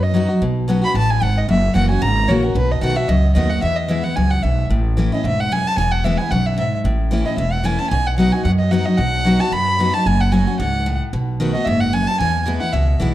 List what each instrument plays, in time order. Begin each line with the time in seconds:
Already playing: upright bass F#2, steel-string acoustic guitar F#2
0.03 fiddle D#5
0.14 steel-string acoustic guitar F#3 B3 D#4 F#4
0.28 steel-string acoustic guitar D#4 F#4
0.42 upright bass B1, steel-string acoustic guitar B2
0.68 steel-string acoustic guitar F#3 B3 C#4 F#4
0.81 steel-string acoustic guitar C#4 F#4, fiddle B5
0.94 upright bass A1, steel-string acoustic guitar A2, fiddle A5
1.10 fiddle G#5
1.22 upright bass G#1, steel-string acoustic guitar G#2, fiddle F#5
1.38 fiddle D#5
1.48 upright bass F#1, steel-string acoustic guitar F#2, fiddle E5
1.74 upright bass F#1, steel-string acoustic guitar E3 A#3 C#4 F#4, fiddle F#5
1.89 steel-string acoustic guitar C#4 F#4, fiddle G#5
2.02 upright bass G#1, steel-string acoustic guitar C#3, fiddle A#5
2.28 upright bass A#1, steel-string acoustic guitar E3 A#3 C#4 F#4, fiddle C#5
2.42 steel-string acoustic guitar C#4 F#4, fiddle A#4
2.55 upright bass B1, steel-string acoustic guitar B2, fiddle B4
2.71 fiddle D#5
2.81 upright bass B1, steel-string acoustic guitar D#3 A3 B3 F#4, fiddle F#5
2.95 steel-string acoustic guitar B3 F#4, fiddle E5
3.09 upright bass C#2, steel-string acoustic guitar F#2, fiddle D#5
3.35 upright bass D#2, steel-string acoustic guitar D#3 A3 B3 F#4, fiddle D#5
3.49 steel-string acoustic guitar B3 F#4, fiddle F#5
3.62 steel-string acoustic guitar E2, upright bass E2, fiddle E5
3.76 fiddle D#5
3.88 steel-string acoustic guitar E3 G#3 B3 E4, fiddle E5
4.03 steel-string acoustic guitar B3 E4, fiddle F#5
4.15 upright bass C#2, steel-string acoustic guitar F#2, fiddle G#5
4.31 fiddle F#5
4.43 upright bass B1, steel-string acoustic guitar G#2, fiddle E5
4.70 upright bass A1, steel-string acoustic guitar A2
4.97 steel-string acoustic guitar E3 A3 C#4 E4
5.12 steel-string acoustic guitar C#4 E4, fiddle D#5
5.24 upright bass E1, steel-string acoustic guitar G#2, fiddle E5
5.40 fiddle F#5
5.52 steel-string acoustic guitar F#2, fiddle G#5
5.67 fiddle A5
5.77 upright bass E1, steel-string acoustic guitar E2, fiddle G#5
5.91 fiddle F#5
6.04 steel-string acoustic guitar E3 G#3 B3 E4, fiddle E5
6.18 steel-string acoustic guitar B3 E4, fiddle G#5
6.31 upright bass B1, steel-string acoustic guitar F#2, fiddle F#5
6.46 fiddle E5
6.58 steel-string acoustic guitar G#2, fiddle E5
6.84 upright bass A1, steel-string acoustic guitar A2
7.11 steel-string acoustic guitar E3 A3 C#4 E4
7.25 steel-string acoustic guitar C#4 E4, fiddle D#5
7.37 upright bass E1, steel-string acoustic guitar E2, fiddle E5
7.52 fiddle F#5
7.64 steel-string acoustic guitar E3 A3 C#4 E4, fiddle G#5
7.79 steel-string acoustic guitar C#4 E4, fiddle A5
7.90 upright bass B1, steel-string acoustic guitar B2, fiddle G#5
8.06 fiddle F#5
8.18 steel-string acoustic guitar F#3 B3 D#4 F#4, fiddle F#5
8.32 steel-string acoustic guitar D#4 F#4, fiddle G#5
8.44 upright bass F#2, steel-string acoustic guitar F#2, fiddle F#5
8.59 fiddle D#5
8.71 steel-string acoustic guitar F#3 B3 D#4 F#4, fiddle F#5
8.86 steel-string acoustic guitar D#4 F#4, fiddle D#5
8.98 upright bass B1, steel-string acoustic guitar B2, fiddle F#5
9.25 steel-string acoustic guitar F#3 B3 D#4 F#4
9.40 steel-string acoustic guitar D#4 F#4, fiddle A5
9.52 upright bass F#2, steel-string acoustic guitar F#2, fiddle B5
9.79 steel-string acoustic guitar F#3 B3 D#4 F#4
9.93 steel-string acoustic guitar D#4 F#4, fiddle A5
10.06 upright bass F#1, steel-string acoustic guitar F#2, fiddle G#5
10.20 fiddle F#5
10.32 steel-string acoustic guitar F#3 A3 C#4 F#4, fiddle G#5
10.47 steel-string acoustic guitar C#4 F#4
10.59 upright bass C#2, steel-string acoustic guitar G#2, fiddle F#5
10.86 steel-string acoustic guitar A2
11.13 upright bass B1, steel-string acoustic guitar B2
11.40 steel-string acoustic guitar D#3 A3 B3 F#4
11.53 steel-string acoustic guitar B3 F#4, fiddle D#5
11.65 upright bass F#1, steel-string acoustic guitar G#2, fiddle E5
11.80 fiddle F#5
11.93 steel-string acoustic guitar F#2, fiddle G#5
12.07 fiddle A5
12.19 upright bass E2, steel-string acoustic guitar E2, fiddle G#5
12.46 steel-string acoustic guitar E3 G#3 B3 E4
12.60 steel-string acoustic guitar B3 E4, fiddle F#5
12.73 upright bass C#2, steel-string acoustic guitar B2, fiddle E5
13.00 upright bass B1, steel-string acoustic guitar E3 G#3 B3 E4